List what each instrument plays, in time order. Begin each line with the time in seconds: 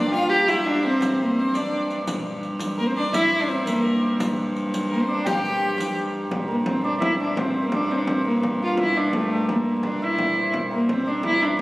Already playing: viola da gamba G2 D4, hammered dulcimer A#4 C5 D5 E5, fiddle D5
0.07 hammered dulcimer G5
0.12 viola da gamba F4, hammered dulcimer F5, fiddle F5, frame drum
0.29 viola da gamba G4, fiddle G5, riq
0.47 viola da gamba E4, hammered dulcimer E5, fiddle E5, riq, frame drum
0.65 viola da gamba D4, hammered dulcimer D5
0.82 viola da gamba C4, fiddle C5, hammered dulcimer C5
1.01 riq, frame drum
1.19 viola da gamba A#3, frame drum
1.35 viola da gamba C4, hammered dulcimer C5, fiddle C5
1.54 viola da gamba D4, fiddle D5, hammered dulcimer D5, riq, frame drum
1.73 frame drum
1.90 riq
2.07 viola da gamba G2, riq, frame drum
2.25 frame drum
2.43 riq, frame drum
2.60 riq, frame drum
2.78 viola da gamba A#3, hammered dulcimer A#4, fiddle A#4
2.86 viola da gamba C4, fiddle C5, hammered dulcimer C5
2.96 viola da gamba D4, fiddle D5, hammered dulcimer D5
3.13 viola da gamba E4, hammered dulcimer E5, fiddle E5, riq, frame drum
3.32 frame drum
3.40 viola da gamba D4, hammered dulcimer D5, fiddle D5
3.48 viola da gamba C4, fiddle C5, hammered dulcimer C5, riq, frame drum
3.60 viola da gamba C4
3.66 viola da gamba A#3, hammered dulcimer A#4, fiddle A#4, riq, frame drum
3.73 fiddle A4
3.80 fiddle A#4
4.01 hammered dulcimer C5
4.20 riq, frame drum
4.38 frame drum
4.56 riq, frame drum
4.74 riq, frame drum
4.90 fiddle A#4, hammered dulcimer A#4
4.94 viola da gamba A#3
4.99 viola da gamba C4, hammered dulcimer C5, fiddle C5
5.08 viola da gamba D4, hammered dulcimer D5
5.25 viola da gamba G4, hammered dulcimer G5, fiddle G5, riq, frame drum
5.33 fiddle F5
5.39 fiddle G5
5.44 riq, frame drum
5.78 riq, frame drum
5.97 frame drum
6.31 viola da gamba G2, frame drum
6.48 viola da gamba A#3, hammered dulcimer A#4
6.66 viola da gamba C4, hammered dulcimer C5, frame drum
6.84 viola da gamba D4, hammered dulcimer D5
7.01 viola da gamba E4, hammered dulcimer E5, frame drum
7.20 viola da gamba D4, hammered dulcimer D5
7.36 viola da gamba C4, hammered dulcimer C5, frame drum
7.63 viola da gamba A#3, hammered dulcimer A#4
7.72 viola da gamba D4, hammered dulcimer D5, frame drum
7.91 viola da gamba C4, hammered dulcimer C5
7.97 viola da gamba D4
8.05 viola da gamba C4, hammered dulcimer C5, frame drum
8.25 viola da gamba A#3, hammered dulcimer A#4
8.43 frame drum
8.62 viola da gamba F4, hammered dulcimer F5
8.77 hammered dulcimer E5, frame drum
8.81 viola da gamba E4
8.97 viola da gamba D4, hammered dulcimer D5
9.13 viola da gamba A3, hammered dulcimer A4, frame drum
9.29 hammered dulcimer A4 A#4
9.49 viola da gamba A#3, hammered dulcimer A#4, frame drum
9.66 frame drum
9.83 viola da gamba D4, hammered dulcimer D5, frame drum
10.02 viola da gamba E4, hammered dulcimer E5, frame drum
10.18 frame drum
10.37 hammered dulcimer C5, frame drum
10.53 viola da gamba G2, frame drum
10.71 viola da gamba A#3, hammered dulcimer A#4
10.89 viola da gamba C4, hammered dulcimer C5, frame drum
11.06 viola da gamba D4, hammered dulcimer D5
11.23 viola da gamba E4, frame drum
11.41 viola da gamba D4, hammered dulcimer D5
11.57 hammered dulcimer C5